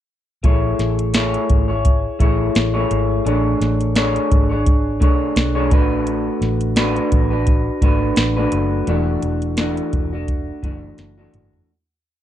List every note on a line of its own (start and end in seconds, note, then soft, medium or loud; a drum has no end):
0.43 0.72 A1 medium
0.43 1.12 A3 medium
0.43 1.14 E4 medium
0.43 1.14 G#4 medium
0.43 1.15 C#5 medium
0.43 kick loud
0.43 closed hi-hat medium
0.79 1.36 A1 medium
0.79 snare soft
0.79 closed hi-hat medium
0.99 closed hi-hat medium
1.14 1.69 A3 medium
1.14 1.69 E4 medium
1.14 1.68 G#4 medium
1.14 1.67 C#5 medium
1.14 snare loud
1.14 closed hi-hat medium
1.34 closed hi-hat soft
1.50 2.06 G#1 medium
1.50 kick medium
1.50 closed hi-hat medium
1.68 2.19 E4 soft
1.68 2.20 G#4 soft
1.68 2.20 C#5 medium
1.85 kick medium
1.85 closed hi-hat medium
2.19 2.48 A1 medium
2.19 2.74 A3 medium
2.19 2.74 E4 medium
2.19 2.73 G#4 medium
2.19 2.73 C#5 medium
2.19 kick medium
2.19 closed hi-hat medium
2.55 2.84 A1 medium
2.55 snare loud
2.55 closed hi-hat medium
2.74 3.24 A3 medium
2.74 3.25 E4 medium
2.74 3.26 G#4 medium
2.74 3.25 C#5 medium
2.91 3.19 G#1 medium
2.91 closed hi-hat medium
3.25 3.54 A1 loud
3.25 3.95 A3 medium
3.25 3.95 D4 medium
3.25 3.95 G#4 medium
3.25 3.96 C#5 medium
3.25 closed hi-hat medium
3.61 4.17 A1 medium
3.61 snare soft
3.61 closed hi-hat medium
3.81 closed hi-hat medium
3.95 4.50 A3 medium
3.95 4.50 D4 medium
3.95 4.50 G#4 medium
3.95 4.48 C#5 medium
3.95 snare loud
3.95 closed hi-hat medium
4.16 closed hi-hat soft
4.32 5.01 G#1 medium
4.32 kick medium
4.32 closed hi-hat medium
4.50 5.00 D4 soft
4.50 5.01 G#4 medium
4.50 5.01 C#5 medium
4.66 kick medium
4.66 closed hi-hat medium
5.00 5.29 B1 medium
5.00 5.55 A3 medium
5.00 5.55 D4 medium
5.00 5.54 G#4 medium
5.00 5.54 C#5 medium
5.00 kick medium
5.00 closed hi-hat medium
5.36 5.72 B1 medium
5.36 snare loud
5.36 closed hi-hat medium
5.55 5.70 A3 medium
5.55 5.71 D4 medium
5.55 5.71 G#4 medium
5.55 5.71 C#5 medium
5.71 6.28 A1 loud
5.71 6.76 A3 medium
5.71 6.76 D4 medium
5.71 6.77 F#4 medium
5.71 6.77 B4 medium
5.71 kick loud
5.71 closed hi-hat medium
6.07 closed hi-hat medium
6.41 6.98 A1 medium
6.41 snare soft
6.41 closed hi-hat medium
6.61 closed hi-hat medium
6.76 7.31 A3 medium
6.76 7.31 D4 medium
6.76 7.30 F#4 medium
6.76 7.29 B4 medium
6.76 snare loud
6.76 closed hi-hat medium
6.96 closed hi-hat soft
7.12 7.68 A1 medium
7.12 kick medium
7.12 closed hi-hat medium
7.30 7.81 D4 soft
7.30 7.82 F#4 medium
7.30 7.82 B4 medium
7.47 kick medium
7.47 closed hi-hat medium
7.82 8.10 G#1 medium
7.82 8.36 A3 medium
7.82 8.37 D4 medium
7.82 8.36 F#4 medium
7.82 8.36 B4 medium
7.82 kick medium
7.82 closed hi-hat medium
8.16 8.45 A1 loud
8.16 snare loud
8.16 closed hi-hat medium
8.37 8.87 A3 medium
8.37 8.87 D4 medium
8.37 8.88 F#4 medium
8.37 8.88 B4 medium
8.52 8.80 F#1 medium
8.52 closed hi-hat medium
8.87 9.16 E1 loud
8.87 9.57 E3 medium
8.87 9.58 A3 medium
8.87 9.58 D4 medium
8.87 9.58 F#4 medium
8.87 closed hi-hat medium
9.22 9.79 E1 medium
9.22 closed hi-hat medium
9.42 closed hi-hat medium
9.57 10.12 E3 medium
9.57 10.12 A3 medium
9.57 10.12 D4 medium
9.57 10.11 F#4 medium
9.57 snare loud
9.57 closed hi-hat medium
9.77 closed hi-hat soft
9.93 10.49 E1 medium
9.93 kick medium
9.93 closed hi-hat medium
10.13 10.62 A3 soft
10.13 10.63 D4 medium
10.13 10.63 F#4 medium
10.28 kick medium
10.28 closed hi-hat medium
10.63 10.91 F#1 medium
10.63 11.17 E3 medium
10.63 11.18 A3 medium
10.63 11.17 D4 medium
10.63 11.17 F#4 medium
10.63 kick medium
10.63 closed hi-hat medium
10.98 11.26 F#1 medium
10.98 snare medium
10.98 closed hi-hat medium
11.18 11.69 E3 medium
11.18 11.69 A3 medium
11.18 11.69 D4 medium
11.18 11.69 F#4 medium
11.33 11.61 F#1 medium
11.33 closed hi-hat medium
11.33 mid tom medium
11.53 floor tom medium